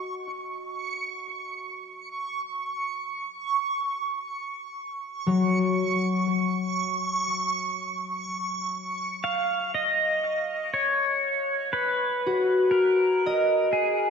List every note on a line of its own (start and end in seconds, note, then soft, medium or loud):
0.00 2.35 F#4 soft
0.00 1.34 D#5 medium
0.00 9.79 C#6 medium
5.27 5.81 F#3 medium
9.24 9.71 F5 medium
9.74 10.73 D#5 loud
9.74 14.10 F#6 medium
10.74 11.78 C#5 medium
11.73 12.77 B4 medium
12.26 14.10 F#4 medium
12.71 13.76 A#4 medium
13.26 14.10 D#5 medium
13.73 14.10 G#4 medium